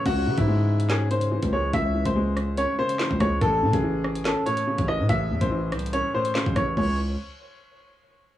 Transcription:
<<
  \new Staff \with { instrumentName = "Upright piano" } { \time 4/4 \key cis \minor \tempo 4 = 143 fis'8. e'4~ e'16 gis'8 bis'4 cis''8 | e''8. bis'4~ bis'16 cis''8 bis'4 cis''8 | a'8. gis'4~ gis'16 a'8 cis''4 dis''8 | e''8. bis'4~ bis'16 cis''8 bis'4 cis''8 |
cis''8 r2. r8 | }
  \new Staff \with { instrumentName = "Felt piano" } { \clef bass \time 4/4 \key cis \minor cis8 e8 gis4 cis'8 cis8 e8 gis8 | cis8 e8 gis4 cis'8 cis8 e8 gis8 | a,8 cis8 e4 cis'8 a,8 cis8 e8 | a,4 e4 cis'8 a,8 cis8 e8 |
<cis e gis cis'>8 r2. r8 | }
  \new Staff \with { instrumentName = "808-style bass" } { \clef bass \time 4/4 \key cis \minor cis,8 cis16 gis,2~ gis,8 cis,8. | cis,8. cis,4. r4 cis,16 cis,8 | a,,8 a,16 a,,4. r4 a,,8 a,16 | a,,8 e,16 a,,8. bis,,8. r4 a,,16 a,,8 |
cis,4 r2. | }
  \new DrumStaff \with { instrumentName = "Drums" } \drummode { \time 4/4 <cymc hh bd>8. <hh bd>16 r8. hh16 <hc hh sn>8 hh16 hh16 r16 <hh bd>8. | <hh bd>8. <hh bd>16 r8 <hh ss>8 hh8. hh16 <hc sn>16 bd16 <hh bd ss>8 | <hh bd>8. <hh bd>16 r8 ss16 hh16 <hc hh sn>8 hh16 hh16 r16 <hh bd>16 ss8 | <hh bd>8. <hh bd>16 \tuplet 3/2 { r16 r16 r16 <hh ss>16 hh16 hh16 } hh8. hh16 <hc sn>16 bd16 <hh bd ss>8 |
<cymc bd>4 r4 r4 r4 | }
>>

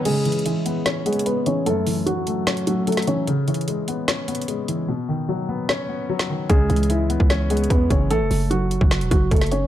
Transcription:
<<
  \new Staff \with { instrumentName = "Felt piano" } { \time 4/4 \key cis \minor \tempo 4 = 149 <gis gis'>4 <e e'>4. <gis gis'>8 <b b'>8 <cis' cis''>8 | <a a'>4 <fis fis'>4. <fis fis'>8 <a a'>8 <cis' cis''>8 | r1 | r1 |
<gis gis'>4 <e e'>4. <gis gis'>8 <b b'>8 <cis' cis''>8 | <a a'>4 <fis fis'>4. <fis fis'>8 <a a'>8 <cis' cis''>8 | }
  \new Staff \with { instrumentName = "Grand piano" } { \clef bass \time 4/4 \key cis \minor cis8 e8 gis8 b8 cis'8 b8 gis8 e8 | fis,8 e8 fis8 a8 cis'8 a8 fis8 e8 | cis8 e8 gis8 b8 cis'8 b8 gis8 e8 | b,8 dis8 fis8 b8 cis'8 b8 fis8 dis8 |
cis8 e8 gis8 b8 cis'8 b8 gis8 e8 | r1 | }
  \new Staff \with { instrumentName = "808-style bass" } { \clef bass \time 4/4 \key cis \minor r1 | r1 | r1 | r1 |
cis,8 cis,4~ cis,16 cis,4~ cis,16 e,8 fis,,8 | a,,16 fis,,16 fis,,4~ fis,,16 fis,,8 e,,16 fis,,8 fis,,4 | }
  \new DrumStaff \with { instrumentName = "Drums" } \drummode { \time 4/4 \tuplet 3/2 { <cymc hh>16 r16 r16 hh16 hh16 hh16 } hh8 hh8 \tuplet 3/2 { <hh sn>16 r16 r16 hh16 hh16 hh16 } hh8 hh8 | hh8 hho8 hh8 hh8 <hh sn>16 hh16 hh8 hh32 hh32 <hh sn>32 hh32 hh8 | \tuplet 3/2 { hh16 r16 r16 hh16 hh16 hh16 } hh8 hh8 \tuplet 3/2 { <hh sn>16 r16 r16 hh16 hh16 hh16 } hh8 hh8 | r4 r4 sn4 r16 sn8. |
\tuplet 3/2 { <hh bd>16 r16 r16 hh16 hh16 hh16 } hh8 hh16 bd16 \tuplet 3/2 { <hh sn>16 r16 r16 hh16 hh16 hh16 } <hh bd>8 <hh bd>8 | hh8 hho8 hh8 hh16 bd16 <hh sn>16 hh16 <hh bd>8 <hh bd>32 hh32 <hh sn>32 hh32 hh8 | }
>>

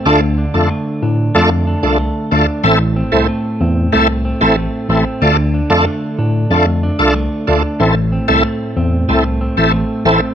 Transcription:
<<
  \new Staff \with { instrumentName = "Tonewheel organ" } { \time 4/4 \key a \minor \tempo 4 = 93 <a d' f' a'>16 r8 <a d' f' a'>16 r4 <a d' f' a'>16 r8 <a d' f' a'>16 r8 <a d' f' a'>16 r16 | <a c' e' a'>16 r8 <a c' e' a'>16 r4 <a c' e' a'>16 r8 <a c' e' a'>16 r8 <a c' e' a'>16 r16 | <a d' f' a'>16 r8 <a d' f' a'>16 r4 <a d' f' a'>16 r8 <a d' f' a'>16 r8 <a d' f' a'>16 r16 | <a c' e' a'>16 r8 <a c' e' a'>16 r4 <a c' e' a'>16 r8 <a c' e' a'>16 r8 <a c' e' a'>16 r16 | }
  \new Staff \with { instrumentName = "Clean electric guitar" } { \time 4/4 \key a \minor d8 d'8 a8 d'8 a8 d'8 a8 d'8 | a,8 c'8 a8 c'8 a8 c'8 a8 c'8 | d8 d'8 a8 d'8 a8 d'8 a8 d'8 | a,8 c'8 a8 c'8 a8 c'8 a8 c'8 | }
  \new Staff \with { instrumentName = "Tine electric piano" } { \clef bass \time 4/4 \key a \minor d,8. f,16 r8 a,8 f,8. c,8 r16 d,16 r16 | a,,8. c,16 r8 e,8 c,8. a,,8 r16 a,,16 r16 | d,8. f,16 r8 a,8 f,8. c,8 r16 d,16 r16 | a,,8. c,16 r8 e,8 c,8. a,,8 r16 a,,16 r16 | }
>>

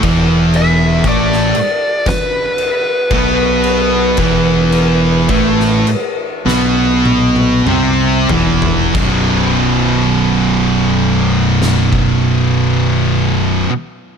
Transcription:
<<
  \new Staff \with { instrumentName = "Lead electric guitar" } { \time 4/4 \key e \minor \tempo 4 = 51 r8 e''8 d''4 b'2~ | b'2. r4 | r1 | }
  \new Staff \with { instrumentName = "Distorted electric guitar" } { \clef bass \time 4/4 \key e \minor <e, e>4 <a, a>8 r4. <b, b>4 | <e, e>4 <a, a>8 r8 <b, b>4 <c c'>8 <e, e>8 | <b,, fis, b,>1 | }
  \new Staff \with { instrumentName = "Distorted electric guitar" } { \clef bass \time 4/4 \key e \minor <e, e>4 <a, a>8 r4. <b, b>4 | <e, e>4 <a, a>8 r8 <b, b>4 <c c'>8 <e, e>8 | <b,, fis, b,>1 | }
  \new Staff \with { instrumentName = "Distorted electric guitar" } { \clef bass \time 4/4 \key e \minor <e, e>4 <a, a>8 r4. <b, b>4 | <e, e>4 <a, a>8 r8 <b, b>4 <c c'>8 <e, e>8 | <b,, fis, b,>1 | }
  \new Staff \with { instrumentName = "Fingered electric bass" } { \clef bass \time 4/4 \key e \minor e,,4 a,,8 r4. b,,4 | e,,4 a,,8 r8 b,,4 c,8 e,,8 | b,,,1 | }
  \new DrumStaff \with { instrumentName = "Drums" } \drummode { \time 4/4 <cymc bd>8 cymc8 <cymc bd>16 sn16 cymc8 <cymc bd sn>8 cymc8 <cymc bd>8 cymc8 | <cymc bd>8 cymc8 <cymc bd>16 sn16 cymc8 sn8 tommh16 tommh16 toml8 tomfh16 tomfh16 | <cymc bd>4 r4 sn16 bd8. r4 | }
>>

